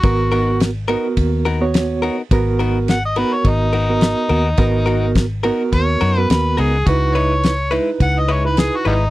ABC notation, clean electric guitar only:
X:1
M:4/4
L:1/8
Q:"Swing 16ths" 1/4=105
K:G#m
V:1 name="Clean electric guitar"
z [B,DFA] z [B,DFA] z [B,DFA] z [B,DFA] | z [B,DFA] z [B,DFA] z [B,DFA] z [B,DFA] | z [B,DFA] z [B,DFA] z [B,DFA] z [B,DFA] | z [G,DEB] z [G,DEB] z [G,DEB] z [G,DEB] |]